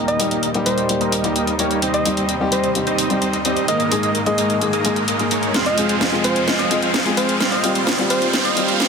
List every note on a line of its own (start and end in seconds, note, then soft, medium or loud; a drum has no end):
0.00 3.65 D#2 medium
0.00 1.80 A#2 medium
0.00 0.28 G3 medium
0.00 3.65 G3 medium
0.00 0.28 A#3 medium
0.00 0.28 D#4 medium
0.00 0.28 A#4 medium
0.00 0.28 D#5 loud
0.00 riser medium
0.08 0.26 D#5 medium
0.08 closed hi-hat soft
0.19 0.34 G3 medium
0.19 0.35 A#3 medium
0.19 0.35 D#4 medium
0.19 0.35 G4 loud
0.19 open hi-hat loud
0.31 0.48 G3 medium
0.31 0.48 A#3 medium
0.31 0.48 D#4 medium
0.31 0.48 A#4 medium
0.31 0.48 D#5 medium
0.31 closed hi-hat soft
0.43 closed hi-hat medium
0.54 0.86 G3 medium
0.54 0.87 A#3 medium
0.54 0.87 D#4 medium
0.54 0.87 G4 loud
0.54 closed hi-hat soft
0.66 0.83 G3 medium
0.66 0.83 A#3 medium
0.66 0.83 D#4 medium
0.66 0.83 A#4 medium
0.66 1.13 C5 medium
0.66 0.83 D#5 medium
0.66 open hi-hat loud
0.78 closed hi-hat medium
0.89 1.21 G3 medium
0.89 1.21 A#3 medium
0.89 1.22 D#4 medium
0.89 1.22 G4 medium
0.89 closed hi-hat medium
1.01 1.33 G3 medium
1.01 1.33 A#3 medium
1.01 1.33 D#4 medium
1.01 1.33 A#4 medium
1.01 1.33 D#5 medium
1.01 closed hi-hat soft
1.12 open hi-hat loud
1.24 1.33 G3 medium
1.24 1.34 A#3 medium
1.24 1.34 D#4 medium
1.24 1.34 G4 loud
1.24 closed hi-hat medium
1.36 1.52 G3 medium
1.36 1.52 A#3 medium
1.36 1.52 D#4 medium
1.36 1.52 A#4 medium
1.36 1.52 D#5 medium
1.36 closed hi-hat medium
1.47 closed hi-hat soft
1.59 1.74 G3 medium
1.59 1.80 G3 medium
1.59 1.74 A#3 medium
1.59 1.80 A#3 medium
1.59 1.80 D#4 medium
1.59 1.74 D#4 medium
1.59 1.74 G4 medium
1.59 1.80 A#4 medium
1.59 1.80 C#5 loud
1.59 open hi-hat loud
1.71 closed hi-hat medium
1.82 3.66 C3 medium
1.82 2.14 G3 medium
1.82 2.14 C4 medium
1.82 2.14 D#4 medium
1.82 2.14 C5 medium
1.82 2.14 D#5 loud
1.82 closed hi-hat medium
1.94 2.12 D#5 medium
1.94 closed hi-hat soft
2.05 2.20 G3 medium
2.05 2.21 C4 medium
2.05 2.21 D#4 medium
2.05 2.21 G4 medium
2.05 open hi-hat loud
2.17 2.34 G3 medium
2.17 2.34 C4 medium
2.17 2.34 D#4 medium
2.17 2.34 C5 medium
2.17 2.34 D#5 medium
2.17 closed hi-hat soft
2.29 closed hi-hat medium
2.40 2.72 G3 medium
2.40 2.73 C4 medium
2.40 2.73 D#4 medium
2.40 2.73 G4 loud
2.52 2.69 G3 medium
2.52 2.69 C4 medium
2.52 2.69 D#4 medium
2.52 2.70 C5 medium
2.52 2.69 C5 medium
2.52 2.69 D#5 medium
2.52 open hi-hat loud
2.64 closed hi-hat medium
2.75 3.07 G3 medium
2.75 3.07 C4 medium
2.75 3.08 D#4 medium
2.75 3.08 G4 medium
2.75 closed hi-hat medium
2.87 3.19 G3 medium
2.87 3.19 C4 medium
2.87 3.19 D#4 medium
2.87 3.19 C5 medium
2.87 3.19 D#5 medium
2.87 closed hi-hat soft
2.98 open hi-hat loud
3.10 3.19 G3 medium
3.10 3.20 C4 medium
3.10 3.20 D#4 medium
3.10 3.20 G4 loud
3.10 closed hi-hat soft
3.22 3.38 G3 medium
3.22 3.38 C4 medium
3.22 3.38 D#4 medium
3.22 3.38 C5 medium
3.22 3.38 D#5 medium
3.22 closed hi-hat medium
3.33 closed hi-hat soft
3.45 3.60 G3 medium
3.45 3.66 G3 medium
3.45 3.60 C4 medium
3.45 3.66 C4 medium
3.45 3.66 D#4 medium
3.45 3.60 D#4 medium
3.45 3.60 G4 medium
3.45 3.66 C5 medium
3.45 3.66 D#5 loud
3.45 open hi-hat loud
3.57 closed hi-hat soft
3.68 5.53 G#2 medium
3.68 5.53 D#3 medium
3.68 4.01 G#3 medium
3.68 5.53 A#3 medium
3.68 4.01 A#3 medium
3.68 4.01 D#4 medium
3.68 4.01 A#4 medium
3.68 3.87 D#5 medium
3.68 4.01 D#5 loud
3.68 closed hi-hat medium
3.80 closed hi-hat soft
3.91 4.06 G#2 medium
3.91 4.06 G#3 medium
3.91 4.07 A#3 medium
3.91 4.07 D#4 medium
3.91 4.07 G#4 loud
3.91 3.99 D#5 medium
3.91 open hi-hat loud
4.03 4.20 G#3 medium
4.03 4.20 A#3 medium
4.03 4.20 D#4 medium
4.03 4.20 A#4 medium
4.03 4.20 D#5 loud
4.03 4.11 D#5 medium
4.03 closed hi-hat soft
4.15 closed hi-hat medium
4.26 4.58 G#2 medium
4.26 4.59 G#3 medium
4.26 4.59 A#3 medium
4.26 4.59 D#4 medium
4.26 4.59 G#4 loud
4.26 4.73 D#5 medium
4.26 closed hi-hat soft
4.38 4.55 G#3 medium
4.38 4.55 A#3 medium
4.38 4.55 D#4 medium
4.38 4.55 A#4 medium
4.38 4.55 D#5 medium
4.38 open hi-hat loud
4.50 closed hi-hat soft
4.61 4.82 G#2 medium
4.61 4.82 G#3 medium
4.61 4.82 A#3 medium
4.61 4.83 D#4 medium
4.61 4.83 G#4 medium
4.61 closed hi-hat medium
4.73 5.05 G#3 medium
4.73 5.05 A#3 medium
4.73 5.05 D#4 medium
4.73 5.05 A#4 medium
4.73 5.05 D#5 medium
4.73 closed hi-hat soft
4.84 4.94 G#2 medium
4.84 4.94 G#3 medium
4.84 4.94 A#3 medium
4.84 4.94 D#4 medium
4.84 4.94 G#4 medium
4.84 open hi-hat loud
4.96 closed hi-hat soft
5.08 5.25 G#3 medium
5.08 5.25 A#3 medium
5.08 5.25 D#4 medium
5.08 5.25 A#4 medium
5.08 5.25 D#5 medium
5.08 closed hi-hat medium
5.19 5.53 G#2 medium
5.19 5.53 G#3 medium
5.19 5.53 A#3 medium
5.19 5.53 D#4 medium
5.19 5.53 G#4 medium
5.19 closed hi-hat soft
5.31 5.52 G#3 medium
5.31 5.52 A#3 medium
5.31 5.52 D#4 medium
5.31 5.52 A#4 medium
5.31 5.52 C#5 loud
5.31 open hi-hat loud
5.43 closed hi-hat soft
5.54 7.39 F2 medium
5.54 7.39 C3 medium
5.54 7.39 G#3 medium
5.54 5.87 G#3 medium
5.54 5.87 C4 medium
5.54 5.87 F4 medium
5.54 5.87 C5 medium
5.54 5.87 F5 medium
5.54 snare soft
5.54 closed hi-hat medium
5.66 5.84 D#5 medium
5.66 closed hi-hat soft
5.77 5.92 G#3 medium
5.77 5.93 C4 medium
5.77 5.93 F4 medium
5.77 5.93 G#4 medium
5.77 open hi-hat loud
5.89 6.06 G#3 medium
5.89 6.06 C4 medium
5.89 6.06 F4 medium
5.89 6.06 C5 medium
5.89 6.06 F5 medium
5.89 closed hi-hat soft
6.01 snare medium
6.01 closed hi-hat medium
6.12 6.44 G#3 medium
6.12 6.45 C4 medium
6.12 6.45 F4 medium
6.12 6.45 G#4 medium
6.24 6.41 G#3 medium
6.24 6.41 C4 medium
6.24 6.41 F4 medium
6.24 6.43 C5 medium
6.24 6.41 C5 medium
6.24 6.41 F5 medium
6.24 open hi-hat loud
6.36 closed hi-hat soft
6.48 6.80 G#3 medium
6.48 6.80 C4 medium
6.48 6.80 F4 medium
6.48 6.80 C5 medium
6.48 6.80 F5 loud
6.48 snare medium
6.48 closed hi-hat medium
6.59 6.77 D#5 medium
6.59 closed hi-hat soft
6.70 6.85 G#3 medium
6.70 6.86 C4 medium
6.70 6.86 F4 medium
6.70 6.86 G#4 medium
6.70 open hi-hat loud
6.82 6.99 G#3 medium
6.82 6.99 C4 medium
6.82 6.99 F4 medium
6.82 6.99 C5 medium
6.82 6.99 F5 medium
6.82 closed hi-hat soft
6.94 snare medium
6.94 closed hi-hat medium
7.05 7.37 G#3 medium
7.05 7.38 C4 medium
7.05 7.38 F4 medium
7.05 7.38 G#4 loud
7.05 closed hi-hat soft
7.17 7.34 G#3 medium
7.17 7.34 C4 medium
7.17 7.34 F4 medium
7.17 7.35 C5 medium
7.17 7.34 C5 medium
7.17 7.34 F5 medium
7.17 open hi-hat loud
7.29 closed hi-hat soft
7.40 8.88 D#2 medium
7.40 8.88 A#2 medium
7.40 8.88 G3 medium
7.40 7.73 G3 medium
7.40 7.73 C4 medium
7.40 7.73 F4 medium
7.40 7.73 C5 medium
7.40 7.73 F5 loud
7.40 snare medium
7.40 closed hi-hat medium
7.52 7.70 D#5 medium
7.52 closed hi-hat soft
7.63 7.78 G3 medium
7.63 7.79 C4 medium
7.63 7.79 F4 medium
7.63 7.79 G4 loud
7.63 open hi-hat loud
7.75 7.92 G3 medium
7.75 7.92 C4 medium
7.75 7.92 F4 medium
7.75 7.92 C5 medium
7.75 7.92 F5 medium
7.75 closed hi-hat medium
7.87 snare medium
7.87 closed hi-hat medium
7.98 8.31 G3 medium
7.98 8.31 C4 medium
7.98 8.31 F4 medium
7.98 8.31 G4 loud
7.98 closed hi-hat soft
8.10 8.27 G3 medium
8.10 8.27 C4 medium
8.10 8.27 F4 medium
8.10 8.28 C5 medium
8.10 8.27 C5 medium
8.10 8.27 F5 medium
8.10 open hi-hat loud
8.22 closed hi-hat medium
8.33 8.66 G3 medium
8.33 8.66 C4 medium
8.33 8.66 F4 medium
8.33 8.66 C5 medium
8.33 8.66 F5 loud
8.33 snare medium
8.33 closed hi-hat medium
8.45 8.63 D#5 medium
8.45 closed hi-hat soft
8.56 8.71 G3 medium
8.56 8.72 C4 medium
8.56 8.72 F4 medium
8.56 8.72 G4 loud
8.56 open hi-hat loud
8.68 8.85 G3 medium
8.68 8.85 C4 medium
8.68 8.85 F4 medium
8.68 8.85 C5 medium
8.68 8.85 F5 loud
8.68 closed hi-hat medium
8.80 snare medium
8.80 closed hi-hat medium